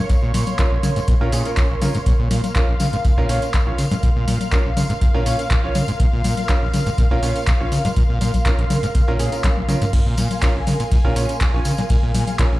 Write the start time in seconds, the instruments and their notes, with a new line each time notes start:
Already playing: ambient pad A#4 F5 C6, analog synth pad C#5
0.10 acid bass A#2, kick, closed hi-hat, tambourine
0.23 acid bass A#2
0.34 acid bass A#2, open hi-hat, tambourine, low conga
0.47 closed hi-hat, tambourine, low conga
0.59 acid bass A#2, grand piano C#4 F4 A#4, kick, clap, closed hi-hat, tambourine
0.72 acid bass A#1
0.83 acid bass C#3, open hi-hat, tambourine, low conga
0.96 acid bass G#2, closed hi-hat, tambourine
1.08 acid bass A#2, kick, closed hi-hat, tambourine
1.21 acid bass A#2, grand piano C#4 F4 A#4
1.32 acid bass A#2, grand piano C#4 F4 G#4, open hi-hat, tambourine
1.45 grand piano C#4 F4 A#4, closed hi-hat, tambourine
1.57 acid bass A#2, kick, clap, closed hi-hat, tambourine
1.70 acid bass A#1
1.82 acid bass C#3, grand piano C#4 F4 A#4, open hi-hat, tambourine, low conga
1.94 acid bass G#2, closed hi-hat, tambourine
2.06 acid bass A#2, analog synth pad F5, kick, closed hi-hat, tambourine
2.19 acid bass A#2
2.31 acid bass A#2, open hi-hat, tambourine, low conga
2.44 closed hi-hat, tambourine, low conga
2.55 acid bass A#2, grand piano C#4 F4 A#4, kick, clap, closed hi-hat, tambourine
2.69 acid bass A#1
2.80 acid bass C#3, open hi-hat, tambourine, low conga
2.93 acid bass G#2, closed hi-hat, tambourine
3.05 acid bass A#2, kick, closed hi-hat, tambourine
3.18 acid bass A#2, grand piano C#4 F4 A#4, kick
3.29 acid bass A#2, grand piano C#4 F4 C#5, open hi-hat, tambourine
3.42 closed hi-hat, tambourine
3.54 acid bass A#2, kick, clap, closed hi-hat, tambourine
3.67 acid bass A#1, grand piano C#4 F4 C#5
3.78 acid bass C#3, open hi-hat, tambourine
3.91 acid bass G#2, closed hi-hat, tambourine, low conga
4.03 acid bass A#2, kick, closed hi-hat, tambourine
4.16 acid bass A#2
4.28 acid bass A#2, open hi-hat, tambourine, low conga
4.41 closed hi-hat, tambourine, low conga
4.52 acid bass A#2, grand piano C#4 F4 A#4, kick, clap, closed hi-hat, tambourine
4.65 acid bass A#1
4.77 acid bass C#3, open hi-hat, tambourine, low conga
4.90 acid bass G#2, closed hi-hat, tambourine
5.01 acid bass A#2, kick, closed hi-hat, tambourine
5.14 acid bass A#2, grand piano C#4 F4 A#4
5.26 acid bass A#2, grand piano C#4 F4 C#5, open hi-hat, tambourine
5.39 closed hi-hat, tambourine
5.51 acid bass A#2, kick, clap, closed hi-hat
5.64 acid bass A#1, grand piano C#4 F4 C#5
5.75 acid bass C#3, open hi-hat, tambourine, low conga
5.88 acid bass G#2, closed hi-hat, tambourine
6.00 acid bass A#2, kick, closed hi-hat, tambourine
6.13 acid bass A#2
6.24 acid bass A#2, open hi-hat, tambourine, low conga
6.37 closed hi-hat, tambourine, low conga
6.49 acid bass A#2, grand piano C#4 F4 A#4, kick, clap, closed hi-hat, tambourine
6.62 acid bass A#1
6.74 acid bass C#3, open hi-hat, tambourine, low conga
6.86 acid bass G#2, closed hi-hat, tambourine
6.98 acid bass A#2, kick, closed hi-hat, tambourine
7.11 acid bass A#2, grand piano C#4 F4 A#4
7.23 acid bass A#2, grand piano C#4 F4 C#5, open hi-hat, tambourine
7.36 closed hi-hat, tambourine
7.47 acid bass A#2, kick, clap, closed hi-hat, tambourine
7.60 acid bass A#1, grand piano C#4 F4 C#5
7.72 acid bass C#3, open hi-hat, tambourine
7.85 acid bass G#2, closed hi-hat, tambourine, low conga
7.96 acid bass A#2, kick, closed hi-hat, tambourine
8.09 acid bass A#2
8.21 acid bass A#2, open hi-hat, tambourine, low conga
8.34 kick, closed hi-hat, tambourine, low conga
8.46 acid bass A#2, grand piano C#4 F4 A#4, kick, clap, closed hi-hat, tambourine
8.59 acid bass A#1, closed hi-hat
8.70 acid bass C#3, open hi-hat, tambourine, low conga
8.83 acid bass G#2, closed hi-hat, tambourine
8.95 acid bass A#2, kick, closed hi-hat, tambourine
9.08 acid bass A#2, grand piano C#4 F4 A#4
9.19 acid bass A#2, grand piano C#4 F4 G#4, open hi-hat, tambourine
9.32 grand piano C#4 F4 A#4, closed hi-hat, tambourine
9.44 acid bass A#2, kick, clap, closed hi-hat, high tom, tambourine
9.57 acid bass A#1, high tom
9.69 acid bass C#3, grand piano C#4 F4 A#4, open hi-hat, tambourine, low conga
9.82 acid bass G#2, closed hi-hat, mid tom, tambourine
9.93 acid bass A#2, analog synth pad G#5, kick, closed hi-hat, ride, tambourine, crash
10.06 acid bass A#2
10.17 acid bass A#2, open hi-hat, tambourine, low conga
10.31 closed hi-hat, tambourine, low conga
10.42 acid bass A#2, grand piano C#4 F4 A#4, kick, clap, closed hi-hat, ride, tambourine
10.55 acid bass A#1
10.67 acid bass C#3, open hi-hat, tambourine, low conga
10.80 acid bass A#2, closed hi-hat, tambourine
10.92 acid bass A#2, kick, closed hi-hat, ride, tambourine
11.04 acid bass A#2, grand piano C#4 F4 A#4, kick
11.16 acid bass A#2, grand piano C#4 F4 C#5, open hi-hat, tambourine
11.29 closed hi-hat, tambourine
11.41 acid bass A#2, kick, clap, closed hi-hat, ride
11.54 acid bass A#1, grand piano C#4 F4 C#5
11.65 acid bass C#3, open hi-hat, tambourine
11.77 acid bass A#2, closed hi-hat, tambourine, low conga
11.89 acid bass A#2, kick, closed hi-hat, ride, tambourine
12.03 acid bass A#2
12.14 acid bass A#2, open hi-hat, tambourine, low conga
12.27 closed hi-hat, tambourine, low conga
12.38 acid bass A#2, grand piano C#4 F4 A#4, kick, clap, closed hi-hat, ride, tambourine
12.52 acid bass A#1